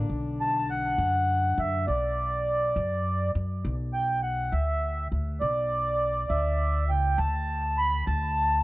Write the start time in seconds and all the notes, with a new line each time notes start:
Already playing: D3 D4
0.10 B1
0.40 A5
0.70 F#5
0.98 F#2
1.58 F#2 E5
1.87 B1 D5
2.76 F#2
3.35 F#2
3.65 B1
3.93 G5
4.23 F#5
4.52 D2 E5
5.12 D2
5.40 B1 D5
6.30 D2 E5
6.88 C#2 G5
7.18 D2 A5
7.78 B5
8.07 D2 A5